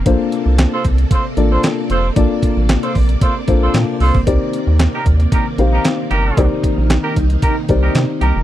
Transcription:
0.00 8.43 C3 medium
0.00 8.43 A#3 medium
0.06 0.17 A#1 loud
0.06 0.74 A#3 loud
0.06 0.74 D4 medium
0.06 0.75 F4 medium
0.06 4.23 A4 medium
0.06 0.75 A4 medium
0.06 0.75 C5 loud
0.06 6.33 D5 medium
0.06 kick loud
0.06 closed hi-hat medium
0.32 closed hi-hat medium
0.46 0.66 C2 loud
0.58 snare loud
0.58 clap medium
0.58 closed hi-hat loud
0.73 0.83 F4 medium
0.73 0.83 A4 medium
0.73 0.83 C5 loud
0.85 1.05 C2 medium
0.85 kick loud
0.85 closed hi-hat medium
0.98 closed hi-hat medium
1.11 1.23 F4 medium
1.11 1.23 A4 medium
1.11 1.23 C5 medium
1.11 kick loud
1.11 closed hi-hat loud
1.37 1.58 A1 loud
1.37 1.88 A#3 medium
1.37 1.88 D4 medium
1.37 1.88 F4 medium
1.37 1.88 A4 medium
1.37 1.89 D5 medium
1.37 closed hi-hat medium
1.51 1.62 F4 medium
1.51 1.62 A4 medium
1.51 1.62 C5 loud
1.63 snare loud
1.63 clap medium
1.63 closed hi-hat medium
1.90 2.11 F1 loud
1.90 2.07 F4 medium
1.90 2.07 A4 medium
1.90 2.07 C5 loud
1.90 closed hi-hat medium
2.16 2.27 A#1 loud
2.16 2.85 A#3 medium
2.16 2.85 D4 medium
2.16 2.85 F4 medium
2.16 2.85 A4 medium
2.16 2.85 D5 medium
2.16 kick loud
2.16 closed hi-hat medium
2.43 kick medium
2.43 closed hi-hat medium
2.57 2.77 A1 medium
2.69 snare loud
2.69 clap loud
2.69 closed hi-hat medium
2.83 2.93 F4 medium
2.83 2.93 A4 medium
2.83 2.93 C5 loud
2.83 closed hi-hat medium
2.95 3.16 A#1 loud
2.95 kick medium
2.95 open hi-hat medium
3.09 closed hi-hat soft
3.21 3.34 F4 medium
3.21 3.34 A4 medium
3.21 3.34 C5 medium
3.21 kick loud
3.21 closed hi-hat medium
3.48 3.68 A#1 medium
3.48 3.99 A#3 medium
3.48 3.99 D4 medium
3.48 3.99 F4 medium
3.48 3.99 A4 medium
3.48 3.99 C5 medium
3.48 kick loud
3.48 closed hi-hat medium
3.62 3.73 F4 medium
3.62 3.73 A4 medium
3.62 3.73 C5 medium
3.74 3.85 A#2 loud
3.74 snare loud
3.74 clap medium
3.74 closed hi-hat medium
4.00 4.11 C2 loud
4.00 4.18 F4 medium
4.00 4.18 A4 medium
4.00 4.18 C5 loud
4.00 open hi-hat medium
4.15 4.24 G1 medium
4.15 kick loud
4.27 4.38 C2 loud
4.27 8.43 D#3 medium
4.27 4.95 C4 medium
4.27 4.95 D#4 medium
4.27 4.96 G4 medium
4.27 4.96 A#4 medium
4.27 4.96 D5 loud
4.27 kick loud
4.27 closed hi-hat medium
4.53 closed hi-hat medium
4.67 4.88 D#2 medium
4.79 snare loud
4.79 clap medium
4.79 closed hi-hat medium
4.94 5.04 D#4 medium
4.94 5.04 G4 medium
4.94 5.04 A#4 medium
5.06 5.26 D#2 loud
5.06 kick medium
5.06 closed hi-hat medium
5.20 closed hi-hat soft
5.32 5.44 D#4 medium
5.32 5.44 G4 medium
5.32 5.44 A#4 medium
5.32 kick loud
5.32 closed hi-hat medium
5.58 5.79 A#1 loud
5.58 6.09 C4 medium
5.58 6.10 D#4 medium
5.58 6.10 G4 medium
5.58 6.10 A#4 medium
5.58 6.10 F5 medium
5.58 closed hi-hat medium
5.73 5.83 D#4 medium
5.73 5.83 G4 medium
5.73 5.83 A#4 medium
5.85 snare loud
5.85 clap medium
5.85 closed hi-hat medium
6.11 6.31 G1 medium
6.11 6.45 D#4 medium
6.11 6.45 G4 loud
6.11 6.45 A#4 medium
6.11 closed hi-hat medium
6.37 6.48 C2 loud
6.37 7.06 C4 medium
6.37 8.43 D#4 medium
6.37 7.06 D#4 medium
6.37 7.06 G4 medium
6.37 7.06 A#4 medium
6.37 7.06 D5 medium
6.37 kick loud
6.37 closed hi-hat loud
6.64 kick medium
6.64 closed hi-hat medium
6.77 6.98 A#1 medium
6.90 snare loud
6.90 clap loud
6.90 closed hi-hat loud
7.03 7.14 D#4 medium
7.03 7.14 G4 medium
7.03 7.14 A#4 medium
7.16 7.37 C2 medium
7.16 kick medium
7.16 closed hi-hat medium
7.30 closed hi-hat soft
7.42 7.54 D#4 medium
7.42 7.54 G4 medium
7.42 7.54 A#4 medium
7.42 kick loud
7.42 closed hi-hat medium
7.69 7.89 C2 medium
7.69 8.20 C4 medium
7.69 8.20 D#4 medium
7.69 8.20 G4 medium
7.69 8.20 A#4 medium
7.69 8.20 D5 medium
7.69 kick loud
7.69 closed hi-hat medium
7.83 7.93 D#4 medium
7.83 7.93 G4 medium
7.83 7.93 A#4 medium
7.95 8.06 C3 medium
7.95 snare loud
7.95 clap medium
7.95 closed hi-hat medium
8.21 8.32 C2 medium
8.21 8.38 D#4 medium
8.21 8.38 G4 medium
8.21 8.38 A#4 medium
8.21 closed hi-hat medium
8.35 8.43 F1 loud

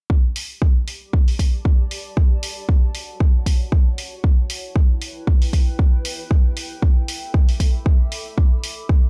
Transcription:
0.10 2.17 G4 medium
0.10 kick loud
0.28 2.90 B5 medium
0.36 open hi-hat loud
0.43 2.17 D5 medium
0.52 4.92 A5 medium
0.62 kick loud
0.88 open hi-hat loud
1.13 kick loud
1.28 open hi-hat medium
1.39 kick medium
1.39 open hi-hat loud
1.65 kick loud
1.91 open hi-hat loud
2.17 3.98 F#4 medium
2.17 kick loud
2.29 4.92 C#5 medium
2.40 3.98 F#5 medium
2.40 open hi-hat loud
2.69 kick loud
2.95 open hi-hat loud
3.20 kick loud
3.46 kick medium
3.46 open hi-hat loud
3.72 kick loud
3.98 7.14 E4 medium
3.98 open hi-hat loud
4.24 7.14 B4 medium
4.24 kick loud
4.50 open hi-hat loud
4.58 7.14 G5 medium
4.76 kick loud
5.02 open hi-hat loud
5.27 kick loud
5.42 open hi-hat medium
5.53 kick medium
5.53 open hi-hat loud
5.79 kick loud
6.05 open hi-hat loud
6.31 9.10 A4 medium
6.31 kick loud
6.54 9.10 E5 medium
6.54 open hi-hat loud
6.70 9.10 B5 medium
6.82 kick loud
7.08 9.10 D6 medium
7.08 open hi-hat loud
7.34 kick loud
7.49 open hi-hat medium
7.60 kick medium
7.60 open hi-hat loud
7.86 kick loud
8.12 open hi-hat loud
8.38 9.10 G4 medium
8.38 kick loud
8.59 9.10 D5 medium
8.64 open hi-hat loud
8.89 kick loud

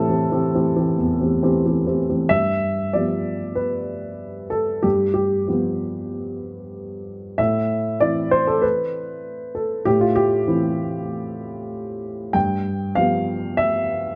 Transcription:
0.00 2.32 A2 medium
0.00 0.09 E3 soft
0.00 0.09 C4 soft
0.00 0.09 G4 medium
0.00 1.97 A4 medium
0.09 0.28 E3 soft
0.09 0.29 C4 soft
0.09 0.29 G4 soft
0.31 0.51 E3 soft
0.31 0.51 C4 medium
0.31 0.52 G4 medium
0.55 0.74 E3 soft
0.55 0.74 C4 soft
0.55 0.75 G4 medium
0.76 0.96 E3 soft
0.76 0.96 C4 soft
0.76 0.96 G4 medium
0.98 1.19 E2 medium
1.20 1.40 E3 soft
1.20 1.40 C4 soft
1.20 1.41 G4 soft
1.43 1.62 E3 medium
1.43 1.62 C4 medium
1.43 1.63 G4 medium
1.65 1.85 E3 soft
1.65 1.85 C4 soft
1.65 1.85 G4 medium
1.86 2.06 E3 soft
1.86 2.06 C4 medium
1.86 2.06 G4 soft
2.10 2.28 E3 soft
2.10 2.28 C4 soft
2.10 2.28 G4 soft
2.29 2.93 G2 medium
2.29 2.94 E5 medium
2.93 4.80 F3 soft
2.93 4.81 B3 soft
2.93 4.81 G4 soft
2.93 3.57 D5 medium
3.55 4.51 B4 medium
4.50 4.83 A4 medium
4.83 5.45 G2 medium
4.83 5.12 G4 medium
5.14 5.47 G4 medium
5.48 7.34 F3 soft
5.48 7.35 B3 soft
5.48 7.35 G4 soft
7.38 7.99 A2 medium
7.38 8.01 E5 medium
8.00 9.82 E3 soft
8.00 9.82 C4 soft
8.00 9.82 E4 soft
8.00 8.31 D5 medium
8.31 8.47 C5 medium
8.47 8.63 A4 medium
8.62 9.54 B4 medium
9.55 9.86 A4 medium
9.85 10.46 A2 medium
9.85 10.01 G4 medium
10.01 10.16 F4 medium
10.16 12.34 G4 medium
10.47 12.30 E3 soft
10.47 12.30 C4 soft
10.47 12.31 E4 soft
12.33 12.95 G2 medium
12.33 12.96 G5 medium
12.95 14.15 F3 soft
12.95 14.15 B3 soft
12.95 14.15 G4 soft
12.95 13.58 F5 medium
13.57 14.15 E5 medium

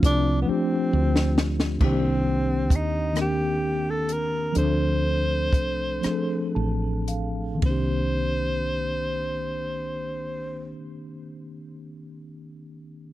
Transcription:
0.00 0.44 C2 medium
0.00 0.11 F3 medium
0.00 0.11 A3 medium
0.00 0.11 C4 medium
0.00 0.12 D4 medium
0.00 0.12 F4 medium
0.00 kick medium
0.04 0.39 D4 medium
0.04 closed hi-hat medium
0.42 1.43 F3 medium
0.42 0.51 B3 medium
0.46 1.44 A3 medium
0.46 1.44 C4 medium
0.46 1.49 C4 medium
0.46 1.45 D4 medium
0.46 1.45 G4 medium
0.46 muted fretless electric bass stroke soft
0.93 1.78 D2 medium
1.16 snare medium
1.38 snare loud
1.60 snare medium
1.79 2.71 C2 medium
1.79 2.78 D#3 medium
1.79 2.78 A#3 medium
1.79 2.78 C4 medium
1.79 2.79 D4 medium
1.79 2.80 G4 medium
1.79 kick medium
1.79 crash medium
1.84 2.77 C4 medium
2.70 4.52 D#2 medium
2.70 kick medium
2.70 closed hi-hat medium
2.75 3.18 D#4 medium
3.13 4.15 D#3 medium
3.13 4.16 A#3 soft
3.13 4.16 C4 medium
3.13 4.16 D4 medium
3.13 4.17 A#4 medium
3.13 cross-stick medium
3.13 closed hi-hat medium
3.21 3.92 G4 medium
3.90 4.14 A4 medium
4.09 4.58 A#4 medium
4.09 closed hi-hat medium
4.52 5.60 F3 medium
4.52 5.60 A3 medium
4.52 5.61 C4 medium
4.52 5.61 D4 medium
4.52 closed hi-hat medium
4.56 5.54 D2 medium
4.56 5.62 A4 medium
4.56 6.52 C5 medium
5.53 6.00 C2 medium
5.53 kick medium
5.53 closed hi-hat medium
6.01 7.16 F3 medium
6.01 7.17 A3 medium
6.01 7.17 C4 medium
6.01 7.18 D4 medium
6.01 muted fretless electric bass stroke soft
6.01 cross-stick medium
6.01 closed hi-hat medium
6.05 6.12 G#4 medium
6.12 7.22 A4 medium
6.55 7.59 A1 medium
6.55 7.04 A5 medium
7.08 7.59 F5 medium
7.08 closed hi-hat soft
7.54 10.63 D#3 medium
7.54 10.67 A#3 medium
7.62 10.72 C2 medium
7.62 10.71 C4 medium
7.62 kick medium
7.62 ride medium
7.66 10.75 D4 medium
7.66 10.75 C5 medium
7.70 10.79 G4 medium

